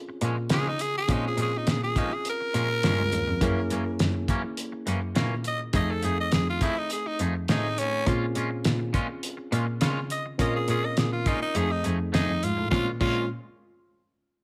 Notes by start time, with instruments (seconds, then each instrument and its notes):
Already playing: reed electric piano C4 C#4 F4 G#4
0.09 muted clean electric guitar stroke
0.21 cello A#2, clean electric guitar A#2 F3 G#3 C#4, closed hi-hat
0.37 muted clean electric guitar stroke
0.49 clean electric guitar A#2 F3 G#3 C#4, cello C#3, tenor saxophone G#4, snare, closed hi-hat
0.68 tenor saxophone D#4
0.79 tenor saxophone G#4, muted clean electric guitar stroke, closed hi-hat
0.95 tenor saxophone G#4, muted clean electric guitar stroke
1.08 cello A#2, clean electric guitar A#2 F3 G#3 C#4, reed electric piano C4 C#4 F4 G#4, kick, closed hi-hat
1.12 tenor saxophone D#4
1.27 tenor saxophone G#4
1.38 cello A#2, clean electric guitar A#2 F3 G#3 C#4, closed hi-hat
1.42 tenor saxophone G#4
1.53 muted clean electric guitar stroke
1.57 tenor saxophone D#4
1.67 cello A#2, muted clean electric guitar stroke, snare, closed hi-hat
1.71 tenor saxophone G#4
1.82 tenor saxophone G#4, muted clean electric guitar stroke
1.96 clean electric guitar A#2 F3 G#3 C#4, tenor saxophone D#4, kick, closed hi-hat
2.12 tenor saxophone G#4, muted clean electric guitar stroke
2.25 closed hi-hat
2.29 tenor saxophone A#4
2.40 muted clean electric guitar stroke
2.54 clean electric guitar A#2 F3 G#3 C#4, cello A#2, closed hi-hat
2.69 muted clean electric guitar stroke
2.83 cello G2, clean electric guitar A#2 F3 G#3 C#4, reed electric piano C4 C#4 F4 G#4, snare, closed hi-hat
2.99 cello C#2
3.12 cello D#2, muted clean electric guitar stroke, closed hi-hat
3.27 cello F2, muted clean electric guitar stroke
3.41 cello F#2, clean electric guitar F#2 E3 A#3 C#4, reed electric piano A#3 C#4 E4 G#4, kick, closed hi-hat
3.70 clean electric guitar F#2 E3 A#3 C#4, cello F#2, closed hi-hat
3.85 muted clean electric guitar stroke
3.99 cello F#2, muted clean electric guitar stroke, snare, closed hi-hat
4.14 muted clean electric guitar stroke
4.28 clean electric guitar F#2 E3 A#3 C#4, kick, closed hi-hat
4.43 muted clean electric guitar stroke
4.57 closed hi-hat
4.72 muted clean electric guitar stroke
4.86 clean electric guitar F#2 E3 A#3 C#4, cello F#2, closed hi-hat
5.01 muted clean electric guitar stroke
5.15 clean electric guitar F#2 E3 A#3 C#4, cello A#2, snare, closed hi-hat
5.44 tenor saxophone D#5, muted clean electric guitar stroke, closed hi-hat
5.60 muted clean electric guitar stroke
5.73 cello F2, clean electric guitar F3 A3 D#4 G#4, reed electric piano A3 C4 D#4 G#4, tenor saxophone D#5, kick, closed hi-hat
5.91 tenor saxophone A4
6.02 cello F2, clean electric guitar F3 A3 D#4 G#4, tenor saxophone G#4, closed hi-hat
6.18 tenor saxophone D#5, muted clean electric guitar stroke
6.32 cello F2, tenor saxophone G#4, muted clean electric guitar stroke, snare, closed hi-hat
6.47 tenor saxophone F4, muted clean electric guitar stroke
6.61 clean electric guitar F3 A3 D#4 G#4, tenor saxophone E4, kick, closed hi-hat
6.76 tenor saxophone D#4, muted clean electric guitar stroke
6.90 tenor saxophone G#4, closed hi-hat
7.06 tenor saxophone D#4, muted clean electric guitar stroke
7.19 cello F2, clean electric guitar F3 A3 D#4 G#4, closed hi-hat
7.35 muted clean electric guitar stroke
7.48 cello A2, clean electric guitar F3 A3 D#4 G#4, reed electric piano A3 C4 D#4 G#4, tenor saxophone D#4, snare, closed hi-hat
7.78 tenor saxophone C#4, muted clean electric guitar stroke, closed hi-hat
7.92 muted clean electric guitar stroke
8.06 cello A#2, clean electric guitar A#2 G#3 C#4 F4, reed electric piano C4 C#4 F4 G#4, kick, closed hi-hat
8.35 clean electric guitar A#2 G#3 C#4 F4, cello A#2, closed hi-hat
8.51 muted clean electric guitar stroke
8.64 cello A#2, muted clean electric guitar stroke, snare, closed hi-hat
8.79 muted clean electric guitar stroke
8.93 clean electric guitar A#2 G#3 C#4 F4, kick, closed hi-hat
9.08 muted clean electric guitar stroke
9.23 closed hi-hat
9.37 muted clean electric guitar stroke
9.51 clean electric guitar A#2 G#3 C#4 F4, cello A#2, closed hi-hat
9.67 muted clean electric guitar stroke
9.81 clean electric guitar A#2 G#3 C#4 F4, cello C#3, snare, closed hi-hat
10.10 tenor saxophone D#5, muted clean electric guitar stroke, closed hi-hat
10.26 muted clean electric guitar stroke
10.38 clean electric guitar A#2 G#3 C#4 F4, cello A#2, reed electric piano C4 C#4 F4 A#4, tenor saxophone D#5, kick, closed hi-hat
10.56 tenor saxophone G#4
10.68 clean electric guitar A#2 G#3 C#4 F4, cello A#2, tenor saxophone G#4, closed hi-hat
10.83 tenor saxophone D#5, muted clean electric guitar stroke
10.97 cello A#2, tenor saxophone G#4, muted clean electric guitar stroke, snare, closed hi-hat
11.12 tenor saxophone F4, muted clean electric guitar stroke
11.26 clean electric guitar A#2 G#3 C#4 F4, tenor saxophone D#4, kick, closed hi-hat
11.41 tenor saxophone D#4, muted clean electric guitar stroke
11.54 cello F2, clean electric guitar F3 A3 D#4 G#4, reed electric piano A3 C4 D#4 G#4, tenor saxophone G#4, closed hi-hat
11.70 tenor saxophone D#4, muted clean electric guitar stroke
11.83 cello F2, clean electric guitar F3 A3 D#4 G#4, closed hi-hat
11.99 muted clean electric guitar stroke
12.12 cello F2, clean electric guitar F3 A3 D#4 G#4, tenor saxophone D#4, snare, closed hi-hat
12.28 cello F2
12.43 cello G#2, tenor saxophone F4, muted clean electric guitar stroke, closed hi-hat
12.57 cello A2, muted clean electric guitar stroke
12.71 clean electric guitar A#2 G#3 C#4 F4, cello A#2, reed electric piano G#3 C4 C#4 F4, tenor saxophone F4, kick, snare
13.00 clean electric guitar A#2 G#3 C#4 F4, cello A#2, reed electric piano G#3 C4 C#4 F4, tenor saxophone F4, kick, crash